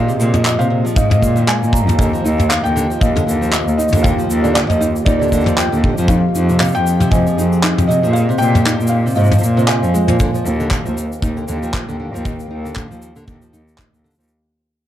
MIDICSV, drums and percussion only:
0, 0, Header, 1, 2, 480
1, 0, Start_track
1, 0, Key_signature, -3, "major"
1, 0, Tempo, 512821
1, 1863, Time_signature, 4, 2, 24, 8
1, 13922, End_track
2, 0, Start_track
2, 0, Title_t, "Drums"
2, 85, Note_on_c, 9, 82, 40
2, 179, Note_off_c, 9, 82, 0
2, 189, Note_on_c, 9, 82, 90
2, 283, Note_off_c, 9, 82, 0
2, 315, Note_on_c, 9, 45, 82
2, 324, Note_on_c, 9, 82, 49
2, 409, Note_off_c, 9, 45, 0
2, 418, Note_off_c, 9, 82, 0
2, 423, Note_on_c, 9, 39, 92
2, 436, Note_on_c, 9, 82, 58
2, 517, Note_off_c, 9, 39, 0
2, 529, Note_off_c, 9, 82, 0
2, 569, Note_on_c, 9, 82, 43
2, 663, Note_off_c, 9, 82, 0
2, 808, Note_on_c, 9, 82, 52
2, 901, Note_off_c, 9, 82, 0
2, 902, Note_on_c, 9, 36, 127
2, 912, Note_on_c, 9, 82, 66
2, 995, Note_off_c, 9, 36, 0
2, 1006, Note_off_c, 9, 82, 0
2, 1039, Note_on_c, 9, 45, 87
2, 1044, Note_on_c, 9, 82, 44
2, 1132, Note_off_c, 9, 45, 0
2, 1138, Note_off_c, 9, 82, 0
2, 1146, Note_on_c, 9, 36, 58
2, 1153, Note_on_c, 9, 82, 89
2, 1240, Note_off_c, 9, 36, 0
2, 1246, Note_off_c, 9, 82, 0
2, 1278, Note_on_c, 9, 82, 48
2, 1372, Note_off_c, 9, 82, 0
2, 1389, Note_on_c, 9, 39, 100
2, 1392, Note_on_c, 9, 82, 57
2, 1483, Note_off_c, 9, 39, 0
2, 1485, Note_off_c, 9, 82, 0
2, 1530, Note_on_c, 9, 82, 44
2, 1618, Note_on_c, 9, 36, 106
2, 1624, Note_off_c, 9, 82, 0
2, 1642, Note_on_c, 9, 82, 86
2, 1711, Note_off_c, 9, 36, 0
2, 1735, Note_off_c, 9, 82, 0
2, 1768, Note_on_c, 9, 45, 77
2, 1768, Note_on_c, 9, 82, 50
2, 1861, Note_off_c, 9, 82, 0
2, 1861, Note_on_c, 9, 36, 115
2, 1862, Note_off_c, 9, 45, 0
2, 1883, Note_on_c, 9, 82, 67
2, 1954, Note_off_c, 9, 36, 0
2, 1976, Note_off_c, 9, 82, 0
2, 2008, Note_on_c, 9, 82, 39
2, 2101, Note_off_c, 9, 82, 0
2, 2112, Note_on_c, 9, 82, 83
2, 2206, Note_off_c, 9, 82, 0
2, 2241, Note_on_c, 9, 45, 75
2, 2246, Note_on_c, 9, 82, 48
2, 2335, Note_off_c, 9, 45, 0
2, 2340, Note_off_c, 9, 82, 0
2, 2348, Note_on_c, 9, 39, 89
2, 2356, Note_on_c, 9, 82, 63
2, 2441, Note_off_c, 9, 39, 0
2, 2450, Note_off_c, 9, 82, 0
2, 2485, Note_on_c, 9, 82, 44
2, 2578, Note_off_c, 9, 82, 0
2, 2593, Note_on_c, 9, 82, 88
2, 2687, Note_off_c, 9, 82, 0
2, 2725, Note_on_c, 9, 82, 52
2, 2818, Note_off_c, 9, 82, 0
2, 2820, Note_on_c, 9, 36, 126
2, 2830, Note_on_c, 9, 82, 61
2, 2914, Note_off_c, 9, 36, 0
2, 2924, Note_off_c, 9, 82, 0
2, 2961, Note_on_c, 9, 45, 78
2, 2971, Note_on_c, 9, 82, 42
2, 3055, Note_off_c, 9, 45, 0
2, 3064, Note_off_c, 9, 82, 0
2, 3077, Note_on_c, 9, 82, 84
2, 3171, Note_off_c, 9, 82, 0
2, 3205, Note_on_c, 9, 82, 48
2, 3299, Note_off_c, 9, 82, 0
2, 3300, Note_on_c, 9, 39, 88
2, 3306, Note_on_c, 9, 82, 63
2, 3394, Note_off_c, 9, 39, 0
2, 3399, Note_off_c, 9, 82, 0
2, 3446, Note_on_c, 9, 82, 43
2, 3539, Note_off_c, 9, 82, 0
2, 3551, Note_on_c, 9, 82, 88
2, 3634, Note_off_c, 9, 82, 0
2, 3634, Note_on_c, 9, 82, 63
2, 3674, Note_on_c, 9, 45, 76
2, 3688, Note_off_c, 9, 82, 0
2, 3688, Note_on_c, 9, 82, 52
2, 3717, Note_off_c, 9, 82, 0
2, 3717, Note_on_c, 9, 82, 58
2, 3768, Note_off_c, 9, 45, 0
2, 3784, Note_on_c, 9, 36, 108
2, 3797, Note_off_c, 9, 82, 0
2, 3797, Note_on_c, 9, 82, 67
2, 3878, Note_off_c, 9, 36, 0
2, 3891, Note_off_c, 9, 82, 0
2, 3924, Note_on_c, 9, 82, 40
2, 4018, Note_off_c, 9, 82, 0
2, 4029, Note_on_c, 9, 82, 79
2, 4122, Note_off_c, 9, 82, 0
2, 4161, Note_on_c, 9, 82, 44
2, 4254, Note_off_c, 9, 82, 0
2, 4269, Note_on_c, 9, 82, 56
2, 4270, Note_on_c, 9, 39, 92
2, 4362, Note_off_c, 9, 82, 0
2, 4364, Note_off_c, 9, 39, 0
2, 4397, Note_on_c, 9, 45, 82
2, 4409, Note_on_c, 9, 82, 40
2, 4490, Note_off_c, 9, 45, 0
2, 4503, Note_off_c, 9, 82, 0
2, 4511, Note_on_c, 9, 82, 85
2, 4605, Note_off_c, 9, 82, 0
2, 4641, Note_on_c, 9, 82, 52
2, 4735, Note_off_c, 9, 82, 0
2, 4740, Note_on_c, 9, 36, 120
2, 4753, Note_on_c, 9, 82, 50
2, 4833, Note_off_c, 9, 36, 0
2, 4846, Note_off_c, 9, 82, 0
2, 4887, Note_on_c, 9, 82, 42
2, 4941, Note_off_c, 9, 82, 0
2, 4941, Note_on_c, 9, 82, 31
2, 4981, Note_on_c, 9, 36, 57
2, 4984, Note_off_c, 9, 82, 0
2, 4984, Note_on_c, 9, 82, 82
2, 4991, Note_off_c, 9, 82, 0
2, 4991, Note_on_c, 9, 82, 28
2, 5074, Note_off_c, 9, 36, 0
2, 5084, Note_off_c, 9, 82, 0
2, 5112, Note_on_c, 9, 45, 78
2, 5128, Note_on_c, 9, 82, 41
2, 5205, Note_off_c, 9, 45, 0
2, 5221, Note_on_c, 9, 39, 86
2, 5222, Note_off_c, 9, 82, 0
2, 5227, Note_on_c, 9, 82, 61
2, 5314, Note_off_c, 9, 39, 0
2, 5321, Note_off_c, 9, 82, 0
2, 5367, Note_on_c, 9, 82, 40
2, 5460, Note_off_c, 9, 82, 0
2, 5465, Note_on_c, 9, 36, 88
2, 5558, Note_off_c, 9, 36, 0
2, 5595, Note_on_c, 9, 82, 55
2, 5689, Note_off_c, 9, 82, 0
2, 5692, Note_on_c, 9, 36, 118
2, 5704, Note_on_c, 9, 82, 58
2, 5786, Note_off_c, 9, 36, 0
2, 5798, Note_off_c, 9, 82, 0
2, 5945, Note_on_c, 9, 82, 81
2, 6039, Note_off_c, 9, 82, 0
2, 6077, Note_on_c, 9, 82, 46
2, 6171, Note_off_c, 9, 82, 0
2, 6177, Note_on_c, 9, 39, 92
2, 6181, Note_on_c, 9, 82, 55
2, 6217, Note_off_c, 9, 82, 0
2, 6217, Note_on_c, 9, 82, 47
2, 6251, Note_off_c, 9, 82, 0
2, 6251, Note_on_c, 9, 82, 40
2, 6270, Note_off_c, 9, 39, 0
2, 6287, Note_off_c, 9, 82, 0
2, 6287, Note_on_c, 9, 82, 32
2, 6319, Note_off_c, 9, 82, 0
2, 6319, Note_on_c, 9, 82, 41
2, 6412, Note_off_c, 9, 82, 0
2, 6426, Note_on_c, 9, 82, 77
2, 6520, Note_off_c, 9, 82, 0
2, 6555, Note_on_c, 9, 45, 74
2, 6563, Note_on_c, 9, 82, 48
2, 6648, Note_off_c, 9, 45, 0
2, 6657, Note_off_c, 9, 82, 0
2, 6661, Note_on_c, 9, 36, 113
2, 6678, Note_on_c, 9, 82, 67
2, 6754, Note_off_c, 9, 36, 0
2, 6771, Note_off_c, 9, 82, 0
2, 6804, Note_on_c, 9, 82, 43
2, 6897, Note_off_c, 9, 82, 0
2, 6915, Note_on_c, 9, 82, 78
2, 7009, Note_off_c, 9, 82, 0
2, 7043, Note_on_c, 9, 82, 50
2, 7137, Note_off_c, 9, 82, 0
2, 7146, Note_on_c, 9, 39, 98
2, 7156, Note_on_c, 9, 82, 52
2, 7240, Note_off_c, 9, 39, 0
2, 7250, Note_off_c, 9, 82, 0
2, 7285, Note_on_c, 9, 45, 80
2, 7290, Note_on_c, 9, 82, 40
2, 7378, Note_off_c, 9, 45, 0
2, 7384, Note_off_c, 9, 82, 0
2, 7402, Note_on_c, 9, 82, 76
2, 7496, Note_off_c, 9, 82, 0
2, 7528, Note_on_c, 9, 82, 56
2, 7622, Note_off_c, 9, 82, 0
2, 7636, Note_on_c, 9, 82, 65
2, 7729, Note_off_c, 9, 82, 0
2, 7773, Note_on_c, 9, 82, 41
2, 7844, Note_off_c, 9, 82, 0
2, 7844, Note_on_c, 9, 82, 36
2, 7883, Note_off_c, 9, 82, 0
2, 7883, Note_on_c, 9, 82, 74
2, 7925, Note_off_c, 9, 82, 0
2, 7925, Note_on_c, 9, 82, 28
2, 8003, Note_on_c, 9, 45, 81
2, 8010, Note_off_c, 9, 82, 0
2, 8010, Note_on_c, 9, 82, 45
2, 8096, Note_off_c, 9, 45, 0
2, 8104, Note_off_c, 9, 82, 0
2, 8109, Note_on_c, 9, 39, 98
2, 8120, Note_on_c, 9, 82, 62
2, 8203, Note_off_c, 9, 39, 0
2, 8214, Note_off_c, 9, 82, 0
2, 8241, Note_on_c, 9, 82, 44
2, 8303, Note_off_c, 9, 82, 0
2, 8303, Note_on_c, 9, 82, 84
2, 8397, Note_off_c, 9, 82, 0
2, 8491, Note_on_c, 9, 82, 47
2, 8518, Note_off_c, 9, 82, 0
2, 8518, Note_on_c, 9, 82, 34
2, 8561, Note_off_c, 9, 82, 0
2, 8561, Note_on_c, 9, 82, 29
2, 8598, Note_off_c, 9, 82, 0
2, 8598, Note_on_c, 9, 82, 29
2, 8642, Note_off_c, 9, 82, 0
2, 8642, Note_on_c, 9, 82, 22
2, 8663, Note_off_c, 9, 82, 0
2, 8663, Note_on_c, 9, 82, 35
2, 8678, Note_off_c, 9, 82, 0
2, 8678, Note_on_c, 9, 82, 17
2, 8718, Note_on_c, 9, 45, 79
2, 8731, Note_off_c, 9, 82, 0
2, 8731, Note_on_c, 9, 82, 49
2, 8781, Note_off_c, 9, 82, 0
2, 8781, Note_on_c, 9, 82, 52
2, 8812, Note_off_c, 9, 45, 0
2, 8831, Note_off_c, 9, 82, 0
2, 8831, Note_on_c, 9, 82, 88
2, 8924, Note_off_c, 9, 82, 0
2, 8972, Note_on_c, 9, 82, 46
2, 9060, Note_on_c, 9, 39, 95
2, 9066, Note_off_c, 9, 82, 0
2, 9073, Note_on_c, 9, 82, 54
2, 9153, Note_off_c, 9, 39, 0
2, 9166, Note_off_c, 9, 82, 0
2, 9204, Note_on_c, 9, 82, 42
2, 9298, Note_off_c, 9, 82, 0
2, 9311, Note_on_c, 9, 82, 78
2, 9404, Note_off_c, 9, 82, 0
2, 9436, Note_on_c, 9, 45, 92
2, 9440, Note_on_c, 9, 82, 53
2, 9529, Note_off_c, 9, 45, 0
2, 9533, Note_off_c, 9, 82, 0
2, 9544, Note_on_c, 9, 82, 60
2, 9547, Note_on_c, 9, 36, 98
2, 9638, Note_off_c, 9, 82, 0
2, 9641, Note_off_c, 9, 36, 0
2, 9687, Note_on_c, 9, 82, 43
2, 9780, Note_off_c, 9, 82, 0
2, 9791, Note_on_c, 9, 82, 67
2, 9885, Note_off_c, 9, 82, 0
2, 9924, Note_on_c, 9, 82, 46
2, 10017, Note_off_c, 9, 82, 0
2, 10023, Note_on_c, 9, 39, 94
2, 10025, Note_on_c, 9, 36, 100
2, 10038, Note_on_c, 9, 82, 48
2, 10117, Note_off_c, 9, 39, 0
2, 10119, Note_off_c, 9, 36, 0
2, 10132, Note_off_c, 9, 82, 0
2, 10165, Note_on_c, 9, 82, 41
2, 10259, Note_off_c, 9, 82, 0
2, 10273, Note_on_c, 9, 82, 76
2, 10367, Note_off_c, 9, 82, 0
2, 10411, Note_on_c, 9, 82, 47
2, 10504, Note_off_c, 9, 82, 0
2, 10505, Note_on_c, 9, 36, 104
2, 10513, Note_on_c, 9, 82, 57
2, 10599, Note_off_c, 9, 36, 0
2, 10607, Note_off_c, 9, 82, 0
2, 10642, Note_on_c, 9, 82, 36
2, 10735, Note_off_c, 9, 82, 0
2, 10746, Note_on_c, 9, 82, 73
2, 10840, Note_off_c, 9, 82, 0
2, 10885, Note_on_c, 9, 82, 43
2, 10979, Note_off_c, 9, 82, 0
2, 10984, Note_on_c, 9, 36, 98
2, 10987, Note_on_c, 9, 39, 93
2, 10990, Note_on_c, 9, 82, 49
2, 11078, Note_off_c, 9, 36, 0
2, 11081, Note_off_c, 9, 39, 0
2, 11084, Note_off_c, 9, 82, 0
2, 11129, Note_on_c, 9, 82, 33
2, 11223, Note_off_c, 9, 82, 0
2, 11379, Note_on_c, 9, 82, 44
2, 11469, Note_off_c, 9, 82, 0
2, 11469, Note_on_c, 9, 36, 94
2, 11469, Note_on_c, 9, 82, 53
2, 11562, Note_off_c, 9, 36, 0
2, 11563, Note_off_c, 9, 82, 0
2, 11603, Note_on_c, 9, 82, 39
2, 11696, Note_off_c, 9, 82, 0
2, 11848, Note_on_c, 9, 82, 46
2, 11939, Note_on_c, 9, 39, 94
2, 11942, Note_off_c, 9, 82, 0
2, 11947, Note_on_c, 9, 36, 90
2, 11954, Note_on_c, 9, 82, 49
2, 12032, Note_off_c, 9, 39, 0
2, 12041, Note_off_c, 9, 36, 0
2, 12047, Note_off_c, 9, 82, 0
2, 12089, Note_on_c, 9, 82, 36
2, 12182, Note_off_c, 9, 82, 0
2, 12188, Note_on_c, 9, 82, 73
2, 12281, Note_off_c, 9, 82, 0
2, 12317, Note_on_c, 9, 82, 44
2, 12411, Note_off_c, 9, 82, 0
2, 12427, Note_on_c, 9, 36, 89
2, 12429, Note_on_c, 9, 82, 50
2, 12521, Note_off_c, 9, 36, 0
2, 12523, Note_off_c, 9, 82, 0
2, 12559, Note_on_c, 9, 82, 37
2, 12653, Note_off_c, 9, 82, 0
2, 12672, Note_on_c, 9, 82, 75
2, 12765, Note_off_c, 9, 82, 0
2, 12804, Note_on_c, 9, 82, 40
2, 12898, Note_off_c, 9, 82, 0
2, 12899, Note_on_c, 9, 39, 86
2, 12906, Note_on_c, 9, 36, 86
2, 12916, Note_on_c, 9, 82, 53
2, 12992, Note_off_c, 9, 39, 0
2, 12999, Note_off_c, 9, 36, 0
2, 13010, Note_off_c, 9, 82, 0
2, 13048, Note_on_c, 9, 82, 38
2, 13142, Note_off_c, 9, 82, 0
2, 13156, Note_on_c, 9, 82, 33
2, 13201, Note_off_c, 9, 82, 0
2, 13201, Note_on_c, 9, 82, 37
2, 13237, Note_off_c, 9, 82, 0
2, 13237, Note_on_c, 9, 82, 46
2, 13292, Note_off_c, 9, 82, 0
2, 13292, Note_on_c, 9, 82, 53
2, 13317, Note_off_c, 9, 82, 0
2, 13317, Note_on_c, 9, 82, 60
2, 13362, Note_off_c, 9, 82, 0
2, 13362, Note_on_c, 9, 82, 63
2, 13456, Note_off_c, 9, 82, 0
2, 13922, End_track
0, 0, End_of_file